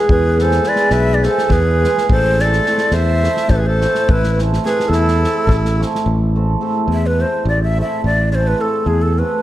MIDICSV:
0, 0, Header, 1, 6, 480
1, 0, Start_track
1, 0, Key_signature, 0, "minor"
1, 0, Tempo, 568182
1, 82, Time_signature, 7, 3, 24, 8
1, 7959, End_track
2, 0, Start_track
2, 0, Title_t, "Ney"
2, 0, Program_c, 0, 77
2, 83, Note_on_c, 0, 71, 89
2, 351, Note_on_c, 0, 72, 76
2, 364, Note_off_c, 0, 71, 0
2, 577, Note_on_c, 0, 74, 87
2, 590, Note_off_c, 0, 72, 0
2, 784, Note_on_c, 0, 76, 94
2, 796, Note_off_c, 0, 74, 0
2, 965, Note_on_c, 0, 74, 66
2, 978, Note_off_c, 0, 76, 0
2, 1047, Note_on_c, 0, 72, 83
2, 1059, Note_off_c, 0, 74, 0
2, 1284, Note_on_c, 0, 71, 88
2, 1297, Note_off_c, 0, 72, 0
2, 1776, Note_off_c, 0, 71, 0
2, 1783, Note_on_c, 0, 72, 94
2, 2035, Note_on_c, 0, 74, 81
2, 2048, Note_off_c, 0, 72, 0
2, 2482, Note_on_c, 0, 76, 92
2, 2495, Note_off_c, 0, 74, 0
2, 2958, Note_on_c, 0, 72, 74
2, 2970, Note_off_c, 0, 76, 0
2, 3008, Note_on_c, 0, 71, 61
2, 3021, Note_off_c, 0, 72, 0
2, 3094, Note_on_c, 0, 72, 80
2, 3107, Note_off_c, 0, 71, 0
2, 3464, Note_on_c, 0, 71, 82
2, 3477, Note_off_c, 0, 72, 0
2, 3708, Note_off_c, 0, 71, 0
2, 3933, Note_on_c, 0, 71, 99
2, 4125, Note_on_c, 0, 69, 91
2, 4138, Note_off_c, 0, 71, 0
2, 4900, Note_off_c, 0, 69, 0
2, 5854, Note_on_c, 0, 76, 86
2, 5968, Note_on_c, 0, 71, 87
2, 5981, Note_off_c, 0, 76, 0
2, 6092, Note_on_c, 0, 72, 80
2, 6105, Note_off_c, 0, 71, 0
2, 6313, Note_off_c, 0, 72, 0
2, 6320, Note_on_c, 0, 74, 76
2, 6441, Note_off_c, 0, 74, 0
2, 6451, Note_on_c, 0, 76, 85
2, 6575, Note_off_c, 0, 76, 0
2, 6600, Note_on_c, 0, 76, 77
2, 6799, Note_off_c, 0, 76, 0
2, 6804, Note_on_c, 0, 74, 79
2, 7008, Note_off_c, 0, 74, 0
2, 7027, Note_on_c, 0, 74, 60
2, 7053, Note_on_c, 0, 72, 74
2, 7065, Note_off_c, 0, 74, 0
2, 7160, Note_on_c, 0, 71, 80
2, 7173, Note_off_c, 0, 72, 0
2, 7274, Note_on_c, 0, 69, 73
2, 7287, Note_off_c, 0, 71, 0
2, 7495, Note_on_c, 0, 68, 80
2, 7508, Note_off_c, 0, 69, 0
2, 7620, Note_on_c, 0, 69, 73
2, 7633, Note_off_c, 0, 68, 0
2, 7761, Note_on_c, 0, 71, 80
2, 7774, Note_off_c, 0, 69, 0
2, 7959, Note_off_c, 0, 71, 0
2, 7959, End_track
3, 0, Start_track
3, 0, Title_t, "Accordion"
3, 0, Program_c, 1, 21
3, 88, Note_on_c, 1, 68, 85
3, 320, Note_off_c, 1, 68, 0
3, 340, Note_on_c, 1, 69, 72
3, 555, Note_off_c, 1, 69, 0
3, 562, Note_on_c, 1, 71, 77
3, 755, Note_off_c, 1, 71, 0
3, 767, Note_on_c, 1, 71, 84
3, 968, Note_off_c, 1, 71, 0
3, 981, Note_on_c, 1, 71, 55
3, 1046, Note_off_c, 1, 71, 0
3, 1048, Note_on_c, 1, 69, 65
3, 1272, Note_off_c, 1, 69, 0
3, 1277, Note_on_c, 1, 68, 82
3, 1772, Note_off_c, 1, 68, 0
3, 1796, Note_on_c, 1, 69, 84
3, 2017, Note_off_c, 1, 69, 0
3, 2053, Note_on_c, 1, 69, 91
3, 2470, Note_on_c, 1, 72, 77
3, 2472, Note_off_c, 1, 69, 0
3, 2960, Note_off_c, 1, 72, 0
3, 2969, Note_on_c, 1, 69, 65
3, 3028, Note_off_c, 1, 69, 0
3, 3030, Note_on_c, 1, 68, 60
3, 3092, Note_off_c, 1, 68, 0
3, 3104, Note_on_c, 1, 69, 79
3, 3459, Note_off_c, 1, 69, 0
3, 3479, Note_on_c, 1, 64, 73
3, 3716, Note_off_c, 1, 64, 0
3, 3930, Note_on_c, 1, 68, 92
3, 4127, Note_off_c, 1, 68, 0
3, 4147, Note_on_c, 1, 64, 91
3, 4911, Note_off_c, 1, 64, 0
3, 7959, End_track
4, 0, Start_track
4, 0, Title_t, "Hammered dulcimer"
4, 0, Program_c, 2, 15
4, 0, Note_on_c, 2, 56, 66
4, 313, Note_off_c, 2, 56, 0
4, 323, Note_on_c, 2, 56, 59
4, 333, Note_on_c, 2, 59, 55
4, 336, Note_on_c, 2, 64, 62
4, 338, Note_on_c, 2, 68, 64
4, 489, Note_off_c, 2, 59, 0
4, 491, Note_off_c, 2, 64, 0
4, 492, Note_off_c, 2, 68, 0
4, 529, Note_off_c, 2, 56, 0
4, 539, Note_on_c, 2, 56, 64
4, 543, Note_on_c, 2, 59, 59
4, 548, Note_on_c, 2, 64, 62
4, 553, Note_on_c, 2, 68, 73
4, 703, Note_off_c, 2, 59, 0
4, 706, Note_off_c, 2, 64, 0
4, 709, Note_off_c, 2, 68, 0
4, 1030, Note_off_c, 2, 56, 0
4, 1040, Note_on_c, 2, 56, 61
4, 1047, Note_on_c, 2, 59, 52
4, 1050, Note_on_c, 2, 64, 58
4, 1057, Note_on_c, 2, 68, 70
4, 1207, Note_off_c, 2, 59, 0
4, 1208, Note_off_c, 2, 64, 0
4, 1212, Note_off_c, 2, 68, 0
4, 1518, Note_off_c, 2, 56, 0
4, 1528, Note_on_c, 2, 56, 67
4, 1529, Note_on_c, 2, 59, 56
4, 1538, Note_on_c, 2, 64, 62
4, 1549, Note_on_c, 2, 68, 67
4, 1697, Note_off_c, 2, 59, 0
4, 1702, Note_off_c, 2, 64, 0
4, 1707, Note_off_c, 2, 68, 0
4, 1811, Note_off_c, 2, 56, 0
4, 2025, Note_on_c, 2, 57, 59
4, 2032, Note_on_c, 2, 60, 56
4, 2036, Note_on_c, 2, 64, 56
4, 2038, Note_on_c, 2, 69, 67
4, 2178, Note_off_c, 2, 57, 0
4, 2182, Note_off_c, 2, 60, 0
4, 2184, Note_off_c, 2, 64, 0
4, 2184, Note_off_c, 2, 69, 0
4, 2247, Note_on_c, 2, 57, 65
4, 2250, Note_on_c, 2, 60, 66
4, 2254, Note_on_c, 2, 64, 57
4, 2257, Note_on_c, 2, 69, 73
4, 2398, Note_off_c, 2, 57, 0
4, 2400, Note_off_c, 2, 60, 0
4, 2401, Note_off_c, 2, 64, 0
4, 2403, Note_off_c, 2, 69, 0
4, 2716, Note_on_c, 2, 57, 61
4, 2717, Note_on_c, 2, 60, 58
4, 2723, Note_on_c, 2, 64, 57
4, 2726, Note_on_c, 2, 69, 71
4, 2883, Note_off_c, 2, 60, 0
4, 2884, Note_off_c, 2, 57, 0
4, 2885, Note_off_c, 2, 64, 0
4, 2888, Note_off_c, 2, 69, 0
4, 3216, Note_on_c, 2, 60, 60
4, 3221, Note_on_c, 2, 57, 66
4, 3225, Note_on_c, 2, 64, 62
4, 3228, Note_on_c, 2, 69, 78
4, 3382, Note_off_c, 2, 60, 0
4, 3384, Note_off_c, 2, 57, 0
4, 3386, Note_off_c, 2, 64, 0
4, 3387, Note_off_c, 2, 69, 0
4, 3689, Note_on_c, 2, 57, 60
4, 3696, Note_on_c, 2, 60, 54
4, 3705, Note_on_c, 2, 64, 56
4, 3708, Note_on_c, 2, 69, 72
4, 3851, Note_off_c, 2, 57, 0
4, 3854, Note_off_c, 2, 60, 0
4, 3858, Note_off_c, 2, 64, 0
4, 3860, Note_off_c, 2, 69, 0
4, 3918, Note_on_c, 2, 57, 58
4, 3920, Note_on_c, 2, 60, 62
4, 3924, Note_on_c, 2, 64, 59
4, 3933, Note_on_c, 2, 69, 65
4, 4074, Note_off_c, 2, 57, 0
4, 4074, Note_off_c, 2, 60, 0
4, 4076, Note_off_c, 2, 64, 0
4, 4081, Note_off_c, 2, 69, 0
4, 4403, Note_on_c, 2, 57, 55
4, 4404, Note_on_c, 2, 60, 53
4, 4414, Note_on_c, 2, 69, 66
4, 4421, Note_on_c, 2, 64, 52
4, 4566, Note_off_c, 2, 57, 0
4, 4566, Note_off_c, 2, 60, 0
4, 4571, Note_off_c, 2, 69, 0
4, 4575, Note_off_c, 2, 64, 0
4, 4898, Note_on_c, 2, 57, 74
4, 4903, Note_on_c, 2, 60, 70
4, 4906, Note_on_c, 2, 64, 71
4, 4914, Note_on_c, 2, 69, 85
4, 5062, Note_off_c, 2, 57, 0
4, 5065, Note_off_c, 2, 60, 0
4, 5066, Note_off_c, 2, 64, 0
4, 5070, Note_off_c, 2, 69, 0
4, 5370, Note_on_c, 2, 57, 69
4, 5374, Note_on_c, 2, 60, 55
4, 5377, Note_on_c, 2, 64, 56
4, 5379, Note_on_c, 2, 69, 63
4, 5530, Note_off_c, 2, 57, 0
4, 5531, Note_off_c, 2, 60, 0
4, 5533, Note_off_c, 2, 64, 0
4, 5534, Note_off_c, 2, 69, 0
4, 5582, Note_on_c, 2, 57, 68
4, 5587, Note_on_c, 2, 60, 71
4, 5590, Note_on_c, 2, 64, 68
4, 5597, Note_on_c, 2, 69, 80
4, 5744, Note_off_c, 2, 57, 0
4, 5747, Note_off_c, 2, 60, 0
4, 5748, Note_off_c, 2, 64, 0
4, 5752, Note_off_c, 2, 69, 0
4, 6070, Note_on_c, 2, 60, 47
4, 6071, Note_on_c, 2, 57, 55
4, 6077, Note_on_c, 2, 64, 50
4, 6083, Note_on_c, 2, 69, 60
4, 6238, Note_off_c, 2, 57, 0
4, 6238, Note_off_c, 2, 60, 0
4, 6241, Note_off_c, 2, 64, 0
4, 6244, Note_off_c, 2, 69, 0
4, 6568, Note_on_c, 2, 60, 56
4, 6573, Note_on_c, 2, 57, 58
4, 6577, Note_on_c, 2, 64, 58
4, 6583, Note_on_c, 2, 69, 69
4, 6734, Note_off_c, 2, 60, 0
4, 6737, Note_off_c, 2, 57, 0
4, 6739, Note_off_c, 2, 64, 0
4, 6742, Note_off_c, 2, 69, 0
4, 7031, Note_on_c, 2, 57, 56
4, 7038, Note_on_c, 2, 60, 52
4, 7040, Note_on_c, 2, 64, 50
4, 7049, Note_on_c, 2, 69, 61
4, 7197, Note_off_c, 2, 57, 0
4, 7201, Note_off_c, 2, 60, 0
4, 7202, Note_off_c, 2, 64, 0
4, 7207, Note_off_c, 2, 69, 0
4, 7250, Note_on_c, 2, 60, 55
4, 7252, Note_on_c, 2, 57, 60
4, 7263, Note_on_c, 2, 64, 52
4, 7266, Note_on_c, 2, 69, 68
4, 7415, Note_off_c, 2, 60, 0
4, 7416, Note_off_c, 2, 57, 0
4, 7421, Note_off_c, 2, 64, 0
4, 7423, Note_off_c, 2, 69, 0
4, 7754, Note_on_c, 2, 57, 61
4, 7756, Note_on_c, 2, 60, 51
4, 7762, Note_on_c, 2, 64, 52
4, 7770, Note_on_c, 2, 69, 71
4, 7916, Note_off_c, 2, 57, 0
4, 7917, Note_off_c, 2, 60, 0
4, 7920, Note_off_c, 2, 64, 0
4, 7924, Note_off_c, 2, 69, 0
4, 7959, End_track
5, 0, Start_track
5, 0, Title_t, "Fingered electric bass"
5, 0, Program_c, 3, 33
5, 80, Note_on_c, 3, 40, 91
5, 494, Note_off_c, 3, 40, 0
5, 767, Note_on_c, 3, 35, 88
5, 1068, Note_off_c, 3, 35, 0
5, 1263, Note_on_c, 3, 40, 98
5, 1565, Note_off_c, 3, 40, 0
5, 1777, Note_on_c, 3, 33, 93
5, 2186, Note_off_c, 3, 33, 0
5, 2463, Note_on_c, 3, 40, 79
5, 2759, Note_off_c, 3, 40, 0
5, 2953, Note_on_c, 3, 33, 86
5, 3251, Note_off_c, 3, 33, 0
5, 3456, Note_on_c, 3, 33, 82
5, 3865, Note_off_c, 3, 33, 0
5, 4135, Note_on_c, 3, 40, 82
5, 4434, Note_off_c, 3, 40, 0
5, 4621, Note_on_c, 3, 33, 94
5, 4923, Note_off_c, 3, 33, 0
5, 5119, Note_on_c, 3, 33, 88
5, 5532, Note_off_c, 3, 33, 0
5, 5808, Note_on_c, 3, 40, 79
5, 6107, Note_off_c, 3, 40, 0
5, 6297, Note_on_c, 3, 33, 91
5, 6598, Note_off_c, 3, 33, 0
5, 6793, Note_on_c, 3, 33, 81
5, 7206, Note_off_c, 3, 33, 0
5, 7486, Note_on_c, 3, 40, 82
5, 7783, Note_off_c, 3, 40, 0
5, 7959, End_track
6, 0, Start_track
6, 0, Title_t, "Drums"
6, 78, Note_on_c, 9, 36, 77
6, 162, Note_off_c, 9, 36, 0
6, 328, Note_on_c, 9, 38, 24
6, 412, Note_off_c, 9, 38, 0
6, 434, Note_on_c, 9, 38, 26
6, 518, Note_off_c, 9, 38, 0
6, 538, Note_on_c, 9, 38, 29
6, 623, Note_off_c, 9, 38, 0
6, 641, Note_on_c, 9, 38, 27
6, 726, Note_off_c, 9, 38, 0
6, 762, Note_on_c, 9, 38, 26
6, 846, Note_off_c, 9, 38, 0
6, 1041, Note_on_c, 9, 38, 29
6, 1126, Note_off_c, 9, 38, 0
6, 1167, Note_on_c, 9, 38, 28
6, 1252, Note_off_c, 9, 38, 0
6, 1268, Note_on_c, 9, 36, 69
6, 1276, Note_on_c, 9, 38, 29
6, 1353, Note_off_c, 9, 36, 0
6, 1360, Note_off_c, 9, 38, 0
6, 1557, Note_on_c, 9, 38, 27
6, 1641, Note_off_c, 9, 38, 0
6, 1671, Note_on_c, 9, 38, 27
6, 1755, Note_off_c, 9, 38, 0
6, 1770, Note_on_c, 9, 36, 73
6, 1855, Note_off_c, 9, 36, 0
6, 2026, Note_on_c, 9, 38, 27
6, 2111, Note_off_c, 9, 38, 0
6, 2137, Note_on_c, 9, 38, 26
6, 2221, Note_off_c, 9, 38, 0
6, 2248, Note_on_c, 9, 38, 31
6, 2333, Note_off_c, 9, 38, 0
6, 2347, Note_on_c, 9, 38, 30
6, 2432, Note_off_c, 9, 38, 0
6, 2459, Note_on_c, 9, 38, 27
6, 2544, Note_off_c, 9, 38, 0
6, 2736, Note_on_c, 9, 38, 26
6, 2820, Note_off_c, 9, 38, 0
6, 2845, Note_on_c, 9, 38, 27
6, 2930, Note_off_c, 9, 38, 0
6, 2941, Note_on_c, 9, 38, 29
6, 2952, Note_on_c, 9, 36, 64
6, 3026, Note_off_c, 9, 38, 0
6, 3036, Note_off_c, 9, 36, 0
6, 3221, Note_on_c, 9, 38, 26
6, 3306, Note_off_c, 9, 38, 0
6, 3337, Note_on_c, 9, 38, 25
6, 3422, Note_off_c, 9, 38, 0
6, 3453, Note_on_c, 9, 36, 83
6, 3538, Note_off_c, 9, 36, 0
6, 3579, Note_on_c, 9, 38, 26
6, 3664, Note_off_c, 9, 38, 0
6, 3706, Note_on_c, 9, 38, 24
6, 3791, Note_off_c, 9, 38, 0
6, 3829, Note_on_c, 9, 38, 28
6, 3913, Note_off_c, 9, 38, 0
6, 3937, Note_on_c, 9, 38, 29
6, 4021, Note_off_c, 9, 38, 0
6, 4054, Note_on_c, 9, 38, 28
6, 4138, Note_off_c, 9, 38, 0
6, 4160, Note_on_c, 9, 38, 24
6, 4244, Note_off_c, 9, 38, 0
6, 4292, Note_on_c, 9, 38, 24
6, 4377, Note_off_c, 9, 38, 0
6, 4428, Note_on_c, 9, 38, 26
6, 4513, Note_off_c, 9, 38, 0
6, 4638, Note_on_c, 9, 36, 70
6, 4646, Note_on_c, 9, 38, 27
6, 4722, Note_off_c, 9, 36, 0
6, 4731, Note_off_c, 9, 38, 0
6, 4776, Note_on_c, 9, 38, 24
6, 4861, Note_off_c, 9, 38, 0
6, 4916, Note_on_c, 9, 38, 27
6, 5000, Note_off_c, 9, 38, 0
6, 5030, Note_on_c, 9, 38, 28
6, 5114, Note_off_c, 9, 38, 0
6, 7959, End_track
0, 0, End_of_file